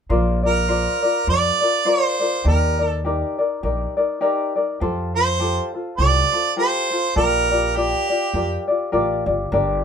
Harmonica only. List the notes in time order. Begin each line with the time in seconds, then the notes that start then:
0.46 A#4
1.29 D5
1.89 C5
2.47 A#4
2.86 A4
5.16 C5
5.97 D5
6.58 C5
7.17 A#4
7.77 G4